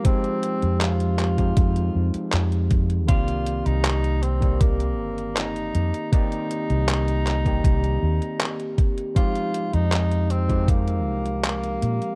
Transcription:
<<
  \new Staff \with { instrumentName = "Tenor saxophone" } { \time 4/4 \key c \minor \tempo 4 = 79 c'4 f'2 r4 | f'8. ees'8. c'8 bes4 ees'4 | ees'2.~ ees'8 r8 | f'8. ees'8. c'8 bes4 bes4 | }
  \new Staff \with { instrumentName = "Tine electric piano" } { \time 4/4 \key c \minor <f aes c' ees' g'>4.~ <f aes c' ees' g'>16 <f aes c' ees' g'>2~ <f aes c' ees' g'>16 | <ees bes c' g' d''>4.~ <ees bes c' g' d''>16 <ees bes c' g' d''>2~ <ees bes c' g' d''>16 | <ees bes c' g' d''>4.~ <ees bes c' g' d''>16 <ees bes c' g' d''>2~ <ees bes c' g' d''>16 | <f aes c' ees' g'>4.~ <f aes c' ees' g'>16 <f aes c' ees' g'>2~ <f aes c' ees' g'>16 | }
  \new Staff \with { instrumentName = "Fretless electric bass" } { \clef bass \time 4/4 \key c \minor r8. f,4~ f,16 f,8 f,16 r16 f,4 | c,8. c,4.~ c,16 g,,4 f,16 r16 | r8. c,4~ c,16 c,8 ees,16 r4 r16 | r8. f,4.~ f,16 c,4 bes,16 r16 | }
  \new DrumStaff \with { instrumentName = "Drums" } \drummode { \time 4/4 <hh bd>16 hh16 hh16 hh16 <hc hh>16 hh16 <hc hh>16 <hh bd>16 <hh bd>16 hh8 hh16 <hc hh>16 hh16 <hh bd>16 hh16 | <hh bd>16 hh16 hh16 hh16 <hc hh>16 hh16 hh16 <hh bd>16 <hh bd>16 hh8 hh16 <hc hh>16 hh16 hh16 hh16 | <hh bd>16 hh16 hh16 hh16 <hc hh>16 hh16 <hc hh>16 <hh bd>16 <hh bd>16 hh8 hh16 <hc hh>16 hh16 <hh bd>16 hh16 | <hh bd>16 hh16 hh16 hh16 <hc hh>16 hh16 hh16 <hh bd>16 <hh bd>16 hh8 hh16 <hc hh>16 hh16 hh16 hh16 | }
>>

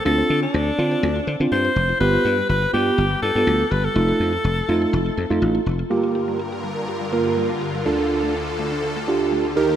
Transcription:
<<
  \new Staff \with { instrumentName = "Alto saxophone" } { \time 4/4 \key g \minor \tempo 4 = 123 a'8. d'2 r16 c''4 | b'4 b'8 g'4 a'4 b'16 a'16~ | a'2. r4 | r1 |
r1 | }
  \new Staff \with { instrumentName = "Synth arpeggio sound" } { \time 4/4 \key g \minor f'16 c''16 r16 f'16 c''16 r16 f'16 c''16 c'16 f'16 c''16 c'16 f'16 c''16 r16 f'16 | g16 f'16 g'16 g16 f'16 g'16 g16 r16 g'16 g16 f'16 g'16 g16 f'16 g'16 g16 | f'16 a'16 r16 f'16 a'16 r16 f'16 a'16 a16 f'16 a'16 a16 f'16 a'16 r16 f'16 | g16 f'16 g'16 g16 f'16 g'16 g16 r16 g'16 g16 f'16 g'16 g16 f'16 g'16 g16 |
a16 d'16 r16 a16 d'16 r16 a16 d'16 d16 a16 d'16 d16 a16 d'16 r16 bes16 | }
  \new Staff \with { instrumentName = "Tine electric piano" } { \time 4/4 \key g \minor <c' d' f'>8. r8. <c' d' f'>8 r8. <c' d' f'>8 r8. | <b f' g'>8. r8. <b f' g'>8 r8. <b f' a'>8 r8. | <a ees' f'>8. r8. <a ees' f'>8 r8. <a ees' f'>8 r8. | <bes f' g'>4 r4. <bes f' bes'>8. r8. |
<d' f' a'>4 r4. <d' f' g'>8. r16 <ees' g' bes'>8 | }
  \new Staff \with { instrumentName = "Supersaw synth" } { \time 4/4 \key g \minor << { r1 | r1 | r1 | <g, bes'>1 |
<d, a'>2.~ <d, a'>8 <ees, bes'>8 | } \\ { r1 | r1 | r1 | <d f'>1~ |
<d f'>2.~ <d f'>8 <ees g'>8 | } >> }
  \new Staff \with { instrumentName = "Slap bass" } { \clef bass \time 4/4 \key g \minor d,8 d8 d,8 d8 d,8 d16 d16 g,8 f,,8 | g,,8 g,8 g,,8 g,8 g,,8 g,16 g,16 d,8 g,,8 | f,,8 f,8 f,,8 f,8 f,,8 f,16 f,16 a,,8 f,,8 | r1 |
r1 | }
>>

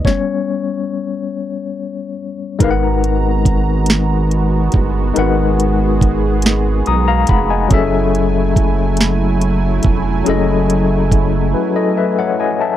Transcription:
<<
  \new Staff \with { instrumentName = "Tine electric piano" } { \time 6/8 \key b \major \tempo 4. = 47 << { cis''2~ cis''8 r8 | \key fis \major r2. | r2 <ais'' dis'''>16 <eis'' ais''>16 <fis'' b''>16 <dis'' gis''>16~ | <dis'' gis''>16 r2 r8. |
r4. <fis' b'>16 <a' dis''>16 <b' e''>16 <cis'' fis''>16 <dis'' gis''>16 <e'' a''>16 | } \\ { <g b cis'>2. | <gis dis' ais' b' eis'' fis''>2. | <gis dis' ais' b' fis''>2. | <fis cis' gis' a' e''>2. |
<fis cis' gis' a' dis''>2. | } >> }
  \new Staff \with { instrumentName = "Analog synth pad" } { \time 6/8 \key b \major << { r2. | \key fis \major ais''2. | gis'2. | gis''2.~ |
gis''2. | } \\ { r2. | <gis b fis'>2.~ | <gis b fis'>2. | <fis a e'>2.~ |
<fis a e'>2. | } >> }
  \new Staff \with { instrumentName = "Analog synth bass" } { \clef bass \time 6/8 \key b \major r2. | \key fis \major gis,,2~ gis,,8 g,,8 | gis,,2 b,,8 eis,,8 | fis,,2~ fis,,8 eis,,8 |
fis,,4. r4. | }
  \new DrumStaff \with { instrumentName = "Drums" } \drummode { \time 6/8 <bd sn>4. r4. | <hh bd>8 hh8 <hh bd>8 <hh sn>8 hh8 <hh bd>8 | hh8 hh8 <hh bd>8 <hh sn>8 hh8 <hh bd>8 | <hh bd>8 hh8 <hh bd>8 <hh sn>8 hh8 <hh bd>8 |
hh8 hh8 <hh bd>8 r4. | }
>>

